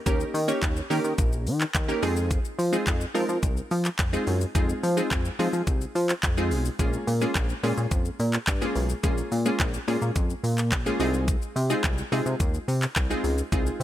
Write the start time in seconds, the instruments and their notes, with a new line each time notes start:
0.06 analog synth bass D#2, synth stab A#3 C#4 D#4 G4 A#4, kick, closed hi-hat, shaker
0.20 shaker
0.34 analog synth bass D#3, open hi-hat, shaker
0.48 synth stab A#3 C#4 D#4 G4 C#5, shaker
0.63 analog synth bass D#2, kick, clap, closed hi-hat, shaker
0.76 shaker
0.90 analog synth bass D#3, synth stab A#3 C#4 D#4 G4 A#4, open hi-hat, shaker
1.04 analog synth bass D#3, shaker
1.18 analog synth bass A#1, kick, closed hi-hat, shaker
1.33 shaker
1.47 analog synth bass D#3, open hi-hat, shaker
1.61 clap, shaker
1.75 analog synth bass D#2, kick, clap, closed hi-hat, shaker
1.88 synth stab A#3 C#4 D#4 G4 A#4, shaker
2.02 analog synth bass F2, synth stab G#3 C4 D#4 F4 G#4, open hi-hat, shaker
2.16 shaker
2.31 kick, closed hi-hat, shaker
2.45 shaker
2.59 analog synth bass F3, open hi-hat, shaker
2.72 synth stab G#3 C4 D#4 F4 G#4, shaker
2.87 analog synth bass F2, kick, clap, closed hi-hat, shaker
3.01 shaker
3.14 analog synth bass F3, synth stab G#3 C4 D#4 F4 A#4, open hi-hat, shaker
3.29 analog synth bass F3, shaker
3.43 analog synth bass C2, kick, closed hi-hat, shaker
3.57 shaker
3.71 analog synth bass F3, open hi-hat, shaker
3.85 clap, shaker
3.99 analog synth bass F2, kick, clap, closed hi-hat, shaker
4.13 synth stab G#3 C4 D#4 F4 G#4, shaker
4.27 analog synth bass F#2, open hi-hat, shaker
4.41 shaker
4.55 analog synth bass F2, synth stab G#3 C4 D#4 F4 G#4, kick, closed hi-hat, shaker
4.69 shaker
4.83 analog synth bass F3, open hi-hat, shaker
4.97 synth stab G#3 C4 D#4 F4 G#4, shaker
5.11 analog synth bass F2, kick, clap, closed hi-hat, shaker
5.25 shaker
5.39 analog synth bass F3, synth stab G#3 C4 D#4 F4 G#4, open hi-hat, shaker
5.53 analog synth bass F3, shaker
5.67 analog synth bass C2, kick, closed hi-hat, shaker
5.81 shaker
5.95 analog synth bass F3, open hi-hat, shaker
6.09 clap, shaker
6.23 analog synth bass F2, kick, clap, closed hi-hat, shaker
6.37 synth stab G#3 C4 D#4 F4 G#4, shaker
6.51 analog synth bass B1, open hi-hat, shaker
6.65 shaker
6.79 analog synth bass A#1, synth stab G#3 A#3 C#4 F4 G#4, kick, closed hi-hat, shaker
6.93 shaker
7.07 analog synth bass A#2, open hi-hat, shaker
7.21 synth stab G#3 A#3 C#4 F4 G#4, shaker
7.35 analog synth bass A#1, kick, clap, closed hi-hat, shaker
7.49 shaker
7.63 analog synth bass A#2, synth stab G#3 A#3 C#4 F4 G#4, open hi-hat, shaker
7.77 analog synth bass A#2, shaker
7.91 analog synth bass F2, kick, closed hi-hat, shaker
8.05 shaker
8.20 analog synth bass A#2, open hi-hat, shaker
8.33 clap, shaker
8.47 analog synth bass G2, kick, clap, closed hi-hat, shaker
8.61 synth stab G#3 A#3 C#4 F4 G#4, shaker
8.75 analog synth bass B1, open hi-hat, shaker
8.89 shaker
9.03 analog synth bass A#1, synth stab G#3 A#3 C#4 F4 G#4, kick, closed hi-hat, shaker
9.18 shaker
9.32 analog synth bass A#2, open hi-hat, shaker
9.45 synth stab G#3 A#3 C#4 F4 G#4, shaker
9.60 analog synth bass A#1, kick, clap, closed hi-hat, shaker
9.74 shaker
9.88 analog synth bass A#2, synth stab G#3 A#3 C#4 F4 G#4, open hi-hat, shaker
10.02 analog synth bass A#2, shaker
10.16 analog synth bass F2, kick, closed hi-hat, shaker
10.30 shaker
10.44 analog synth bass A#2, open hi-hat, shaker
10.58 clap, shaker
10.72 analog synth bass A#1, kick, clap, closed hi-hat, shaker
10.86 synth stab G#3 A#3 C#4 F4 G#4, shaker
11.00 analog synth bass C2, synth stab G#3 C4 D#4 F4 G#4, open hi-hat, shaker
11.14 shaker
11.28 kick, closed hi-hat, shaker
11.42 shaker
11.56 analog synth bass C3, open hi-hat, shaker
11.70 synth stab G#3 C4 D#4 F4 G#4, shaker
11.84 analog synth bass C2, kick, clap, closed hi-hat, shaker
11.98 shaker
12.12 analog synth bass C3, synth stab G#3 C4 D#4 F4 G#4, open hi-hat, shaker
12.26 analog synth bass C3, shaker
12.40 analog synth bass D#2, kick, closed hi-hat, shaker
12.54 shaker
12.68 analog synth bass C3, open hi-hat, shaker
12.82 clap, shaker
12.96 analog synth bass C2, kick, clap, closed hi-hat, shaker
13.10 synth stab G#3 C4 D#4 F4 G#4, shaker
13.24 analog synth bass C#2, open hi-hat, shaker
13.38 shaker
13.52 analog synth bass C2, synth stab G#3 C4 D#4 F4 G#4, kick, closed hi-hat, shaker
13.66 shaker
13.80 analog synth bass C3